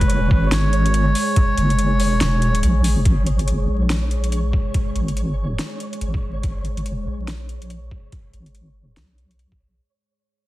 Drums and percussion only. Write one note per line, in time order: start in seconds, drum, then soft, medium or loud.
0.01 kick medium
0.01 closed hi-hat medium
0.10 closed hi-hat medium
0.31 kick loud
0.52 snare loud
0.52 closed hi-hat medium
0.73 closed hi-hat medium
0.86 closed hi-hat medium
0.94 closed hi-hat medium
1.15 open hi-hat loud
1.36 kick loud
1.36 closed hi-hat medium
1.57 closed hi-hat medium
1.70 closed hi-hat medium
1.79 closed hi-hat medium
2.00 open hi-hat medium
2.21 snare loud
2.21 closed hi-hat medium
2.42 closed hi-hat medium
2.55 closed hi-hat medium
2.63 closed hi-hat medium
2.84 open hi-hat loud
3.05 kick loud
3.05 closed hi-hat medium
3.26 closed hi-hat medium
3.39 closed hi-hat medium
3.48 closed hi-hat medium
3.90 snare loud
3.90 closed hi-hat medium
4.11 closed hi-hat medium
4.24 closed hi-hat medium
4.32 closed hi-hat medium
4.53 kick loud
4.74 kick loud
4.74 closed hi-hat medium
4.96 closed hi-hat medium
5.08 closed hi-hat medium
5.17 closed hi-hat medium
5.59 snare loud
5.59 closed hi-hat medium
5.80 closed hi-hat medium
5.93 closed hi-hat medium
6.01 closed hi-hat medium
6.14 kick loud
6.43 kick loud
6.43 closed hi-hat medium
6.65 closed hi-hat soft
6.77 closed hi-hat soft
6.86 closed hi-hat medium
7.28 snare loud
7.28 closed hi-hat medium
7.49 closed hi-hat medium
7.62 closed hi-hat medium
7.70 closed hi-hat medium
7.91 kick loud
8.12 kick loud
8.12 closed hi-hat medium
8.34 closed hi-hat soft
8.46 closed hi-hat soft
8.55 closed hi-hat medium
8.97 snare loud
8.97 closed hi-hat medium
9.18 closed hi-hat soft
9.31 closed hi-hat soft
9.39 closed hi-hat medium
9.52 kick loud